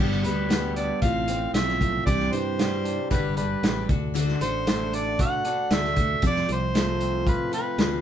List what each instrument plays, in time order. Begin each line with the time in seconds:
Already playing: fingered electric bass G1, steel-string acoustic guitar G2
0.00 steel-string acoustic guitar D3 G3 B3 D4 G4, clean electric guitar G3
0.12 snare
0.23 fingered electric bass D2, steel-string acoustic guitar G3 B3 D4 G4, clean electric guitar G3, harmonica B4, closed hi-hat
0.49 steel-string acoustic guitar G3 B3 D4 G4, clean electric guitar B3, snare, closed hi-hat
0.76 clean electric guitar D4, harmonica D5, closed hi-hat
1.02 fingered electric bass A1, clean electric guitar A2, steel-string acoustic guitar A3 C4 F4 A4, harmonica F5, kick, closed hi-hat
1.27 clean electric guitar C4, steel-string acoustic guitar C4 F4 A4, closed hi-hat
1.54 fingered electric bass B1, clean electric guitar F3, steel-string acoustic guitar A3 C4 F4 A4, harmonica E5, snare, closed hi-hat
1.68 snare
1.80 clean electric guitar A3, steel-string acoustic guitar C4 F4 A4, kick, closed hi-hat
2.06 fingered electric bass C2, clean electric guitar C3, steel-string acoustic guitar C3 E3 G3 C4 D4 G4, harmonica D5, kick, closed hi-hat
2.20 snare
2.32 fingered electric bass G2, clean electric guitar E3, steel-string acoustic guitar G3 C4 D4 G4, harmonica C5, closed hi-hat
2.58 clean electric guitar G3, steel-string acoustic guitar G3 C4 D4 G4, snare, closed hi-hat
2.85 clean electric guitar D4, closed hi-hat
3.10 fingered electric bass G1, steel-string acoustic guitar G2 D3 G3 D4 G4 B4, clean electric guitar G2, harmonica B4, kick, closed hi-hat
3.37 steel-string acoustic guitar G3 D4 G4 B4, clean electric guitar D4, harmonica B4, closed hi-hat
3.63 fingered electric bass A1, steel-string acoustic guitar G3 D4 G4 B4, clean electric guitar G3, snare, closed hi-hat
3.89 fingered electric bass D2, clean electric guitar D3, steel-string acoustic guitar D4 F#4 A4, kick, closed hi-hat
4.14 steel-string acoustic guitar D3 A3 D4 F#4 A4, clean electric guitar D3, closed hi-hat
4.28 snare
4.41 fingered electric bass A1, clean electric guitar D3, steel-string acoustic guitar D4 F#4 A4, harmonica C5, closed hi-hat
4.67 steel-string acoustic guitar A3 D4 F#4 A4, clean electric guitar A3, snare, closed hi-hat
4.93 clean electric guitar D4, harmonica D5, closed hi-hat
5.19 clean electric guitar F#4, harmonica F#5, kick, closed hi-hat
5.45 clean electric guitar D4, steel-string acoustic guitar D4 F#4 A4, closed hi-hat
5.71 fingered electric bass D2, clean electric guitar D3, steel-string acoustic guitar A3 D4 F#4 A4, harmonica E5, snare, closed hi-hat
5.84 snare
5.96 clean electric guitar A3, steel-string acoustic guitar D4 F#4 A4, kick, closed hi-hat
6.22 fingered electric bass F2, clean electric guitar F2, steel-string acoustic guitar F3 C4 F4 A4, kick, closed hi-hat
6.26 harmonica D5
6.36 snare
6.49 fingered electric bass C2, clean electric guitar F3, steel-string acoustic guitar C4 F4 A4, harmonica C5, closed hi-hat
6.74 steel-string acoustic guitar F3 C4 F4 A4, clean electric guitar A3, snare, closed hi-hat
7.01 clean electric guitar C4, closed hi-hat
7.27 clean electric guitar F4, harmonica B4, kick, closed hi-hat
7.52 clean electric guitar C4, steel-string acoustic guitar C4 F4 A4, harmonica B4, closed hi-hat
7.78 fingered electric bass D2, steel-string acoustic guitar F3 C4 F4 A4, clean electric guitar F3, snare, closed hi-hat